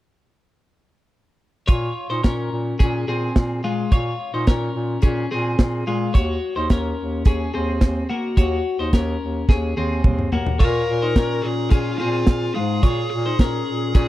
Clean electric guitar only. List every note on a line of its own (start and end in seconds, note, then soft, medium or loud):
1.68 2.08 F4 medium
1.68 2.07 C#5 medium
2.10 2.24 D#4 soft
2.10 2.23 C5 medium
2.24 2.77 C#4 soft
2.24 2.76 A#4 medium
2.79 3.08 C#4 soft
2.79 3.07 G#4 medium
3.08 3.61 C4 medium
3.08 3.60 G#4 medium
3.64 3.92 G#3 medium
3.64 3.92 F4 medium
3.92 4.32 F4 medium
3.92 4.31 C#5 medium
4.34 4.48 D#4 soft
4.34 4.47 C5 soft
4.48 5.00 C#4 medium
4.48 5.00 A#4 medium
5.03 5.31 C#4 medium
5.03 5.30 G#4 medium
5.31 5.84 C4 soft
5.31 5.84 G#4 medium
5.87 6.15 G#3 soft
5.87 6.15 F4 medium
6.14 6.54 F#4 medium
6.14 6.54 C#5 medium
6.56 6.71 D#4 soft
6.56 6.70 C5 medium
6.71 7.23 C#4 medium
6.71 7.23 A#4 medium
7.26 7.54 C#4 medium
7.26 7.53 G#4 medium
7.54 8.07 C4 medium
7.54 8.06 G#4 medium
8.10 8.38 A#3 soft
8.10 8.37 F#4 medium
8.37 8.77 F#4 medium
8.37 8.77 C#5 medium
8.79 8.94 D#4 soft
8.79 8.93 C5 medium
8.94 9.46 C#4 medium
8.94 9.46 A#4 medium
9.49 9.77 C#4 medium
9.49 9.76 G#4 medium
9.77 10.30 C4 soft
9.77 10.29 G#4 medium
10.33 10.61 A#3 medium
10.33 10.60 F#4 medium
10.59 11.00 F4 medium
10.59 10.99 C#5 loud
11.02 11.17 D#4 soft
11.02 11.16 C5 medium
11.16 11.69 C#4 medium
11.16 11.69 A#4 medium
11.72 12.00 C#4 medium
11.72 11.99 G#4 medium
12.00 12.53 C4 medium
12.00 12.52 G#4 medium
12.55 12.84 G#3 medium
12.55 12.83 F4 medium
12.83 13.23 F4 medium
12.83 13.23 C#5 medium
13.26 13.40 D#4 soft
13.26 13.40 C5 medium
13.40 13.92 C#4 medium
13.40 13.92 A#4 medium
13.95 14.08 C#4 medium
13.95 14.08 G#4 medium